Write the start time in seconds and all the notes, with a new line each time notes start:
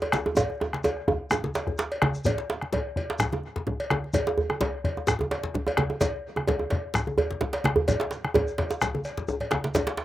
0.02 cowbell, djembe tone
0.12 bombo rim, djembe slap, high conga, djembe tone, shekere
0.26 djembe tone
0.36 bombo low, cowbell, djembe slap, djembe tone, djembe bass, low conga, shekere
0.50 bombo rim, djembe slap, high conga
0.60 bombo rim, djembe tone
0.73 bombo rim, djembe slap, high conga
0.84 bombo rim, cowbell, high conga, djembe tone, shekere
0.97 bombo rim
1.08 bombo rim, bombo low, djembe slap, djembe tone, high conga, djembe bass
1.30 bombo rim, djembe tone, low conga, shekere
1.44 djembe slap, high conga, djembe tone
1.55 cowbell, djembe slap, shekere
1.67 bombo rim, bombo low, high conga, djembe bass
1.78 bombo rim, djembe slap, shekere
1.91 cowbell, djembe slap
2.02 bombo rim, djembe slap, djembe tone, high conga
2.14 shekere
2.25 bombo low, cowbell, high conga, djembe bass, low conga, shekere
2.38 djembe slap
2.50 djembe slap
2.61 bombo rim, high conga
2.72 bombo rim, cowbell, djembe slap, djembe tone, djembe bass, low conga
2.96 bombo low, cowbell
3.10 djembe slap
3.19 bombo rim, djembe slap, high conga, low conga, djembe bass, shekere
3.32 high conga, djembe tone
3.44 high conga
3.56 bombo low, djembe slap
3.67 bombo rim, djembe slap, low conga, djembe bass
3.80 cowbell, high conga
3.90 bombo rim, djembe slap, high conga, djembe tone
4.04 djembe slap
4.13 bombo low, cowbell, high conga, low conga, djembe bass, shekere
4.27 djembe slap, djembe tone
4.38 djembe bass
4.50 bombo rim, djembe tone, high conga
4.61 bombo rim, cowbell, djembe slap, djembe tone, djembe bass, low conga
4.84 bombo low, cowbell, djembe slap
4.97 djembe tone
5.07 bombo rim, djembe slap, high conga, djembe bass, low conga, shekere
5.19 djembe tone
5.21 djembe tone, high conga
5.31 cowbell, djembe slap
5.43 bombo low, djembe slap
5.54 bombo rim, djembe slap, djembe bass, low conga
5.67 cowbell, djembe tone, high conga
5.77 bombo rim, djembe slap, djembe tone, high conga, djembe bass
5.90 djembe slap, djembe tone
6.01 bombo low, cowbell, djembe slap, high conga, djembe bass, low conga, shekere
6.36 bombo rim, djembe tone, high conga
6.47 bombo rim, cowbell, djembe slap, djembe tone, djembe bass, low conga
6.59 djembe tone
6.70 bombo low, cowbell, djembe slap
6.94 bombo rim, djembe slap, high conga, djembe bass, low conga, shekere
7.07 djembe tone, high conga
7.18 cowbell, high conga, djembe bass
7.31 bombo low, djembe slap
7.41 bombo rim, djembe slap, low conga, djembe bass
7.53 cowbell, djembe slap, high conga
7.64 bombo rim, djembe slap, high conga, djembe tone
7.76 djembe slap, djembe bass
7.88 bombo rim, bombo low, cowbell, high conga, djembe bass, low conga, shekere
8.00 bombo rim, djembe slap
8.11 djembe slap, high conga, shekere
8.13 djembe slap
8.24 bombo rim, djembe slap, high conga
8.34 cowbell, djembe slap, djembe tone, djembe bass, low conga
8.47 shekere
8.58 bombo rim, bombo low, cowbell, djembe slap
8.70 djembe slap, shekere
8.81 bombo rim, djembe slap, low conga, djembe bass, shekere
8.95 bombo rim, djembe slap, djembe tone, high conga
9.04 bombo rim, cowbell, high conga, shekere
9.17 bombo low, djembe slap, low conga
9.28 low conga, djembe bass, shekere
9.40 bombo rim, cowbell, low conga
9.51 bombo rim, djembe slap, djembe tone, high conga
9.64 djembe slap, high conga
9.74 bombo low, cowbell, djembe slap, high conga, djembe bass, low conga, shekere
9.87 djembe slap
9.97 djembe slap